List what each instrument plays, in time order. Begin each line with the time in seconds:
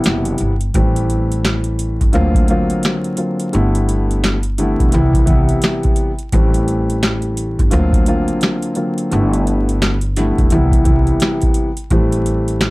Already playing: grand piano C3 E3 G3 B3 E4
0.04 upright bass F#1, snare, closed hi-hat
0.25 closed hi-hat
0.38 upright bass G1, closed hi-hat
0.61 closed hi-hat
0.74 upright bass A1, grand piano E3 G3 A3 C4 G4, kick, closed hi-hat
0.96 closed hi-hat
1.10 closed hi-hat
1.32 closed hi-hat
1.45 snare, closed hi-hat
1.64 closed hi-hat
1.79 closed hi-hat
2.01 upright bass G1, kick, closed hi-hat
2.13 upright bass D2, grand piano D3 F#3 A#3 C4 F4, closed hi-hat
2.35 kick, closed hi-hat
2.48 grand piano D3 F#3 A#3 C4 F4, closed hi-hat
2.70 closed hi-hat
2.83 snare, closed hi-hat
3.04 closed hi-hat
3.17 grand piano D3 F#3 A#3 C4 F4, closed hi-hat
3.40 closed hi-hat
3.53 upright bass G1, grand piano D3 G3 A3 B3 E4, closed hi-hat
3.75 closed hi-hat
3.89 closed hi-hat
4.11 closed hi-hat
4.24 snare, closed hi-hat
4.43 closed hi-hat
4.58 grand piano D3 G3 A3 B3 E4, closed hi-hat
4.80 upright bass E1, kick, closed hi-hat
4.92 upright bass C2, grand piano C3 E3 G3 B3 E4, closed hi-hat
5.14 kick, closed hi-hat
5.26 grand piano C3 E3 G3 B3 E4, kick, closed hi-hat
5.49 closed hi-hat
5.62 snare, closed hi-hat
5.83 kick, closed hi-hat
5.96 closed hi-hat
6.19 closed hi-hat
6.32 upright bass A1, grand piano E3 G3 A3 C4 G4, kick, closed hi-hat
6.54 closed hi-hat
6.68 closed hi-hat
6.90 closed hi-hat
7.03 snare, closed hi-hat
7.22 closed hi-hat
7.37 closed hi-hat
7.59 upright bass G1, kick, closed hi-hat
7.71 upright bass D2, grand piano D3 F#3 A#3 C4 F4, closed hi-hat
7.93 kick, closed hi-hat
8.06 grand piano D3 F#3 A#3 C4 F4, closed hi-hat
8.28 closed hi-hat
8.41 snare, closed hi-hat
8.62 closed hi-hat
8.75 grand piano D3 F#3 A#3 C4 F4, closed hi-hat
8.98 closed hi-hat
9.11 upright bass G1, grand piano D3 G3 A3 B3 E4, closed hi-hat
9.33 closed hi-hat
9.47 closed hi-hat
9.69 closed hi-hat
9.82 snare, closed hi-hat
10.01 closed hi-hat
10.16 grand piano D3 G3 A3 B3 E4, snare, closed hi-hat
10.38 upright bass E1, kick, closed hi-hat
10.50 upright bass C2, grand piano C3 E3 G3 B3 E4, closed hi-hat
10.72 kick, closed hi-hat
10.84 grand piano C3 E3 G3 B3 E4, kick, closed hi-hat
11.07 closed hi-hat
11.20 snare, closed hi-hat
11.41 kick, closed hi-hat
11.54 closed hi-hat
11.77 closed hi-hat
11.90 upright bass A1, grand piano E3 G3 A3 C4 G4, kick, closed hi-hat
12.12 closed hi-hat
12.26 closed hi-hat
12.48 closed hi-hat
12.61 snare, closed hi-hat